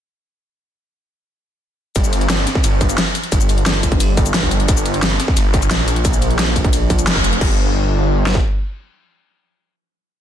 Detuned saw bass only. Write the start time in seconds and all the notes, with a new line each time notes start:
1.96 G1
2.64 G1
3.32 G1
4.17 G1
4.68 G1
5.37 G1
5.71 A#1
7.07 F1
7.41 G1